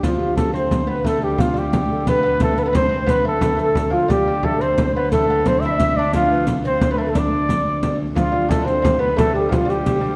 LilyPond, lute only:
\new Staff \with { instrumentName = "Lute" } { \time 6/8 \key d \dorian \tempo 4. = 118 f4. c'4 b8 | a8 g8 f8 g4. | b8 b8 a8 b16 b16 c'8 c'8 | b8 a8 b8 a4 f8 |
g8 g8 a8 c'4 b8 | a8 b8 c'8 e'4 d'8 | f4 r8 c'8. b16 a8 | d'2~ d'8 r8 |
f8 g8 a16. d'32 c'8 c'8 b8 | a8 g8 f8 g4 g8 | }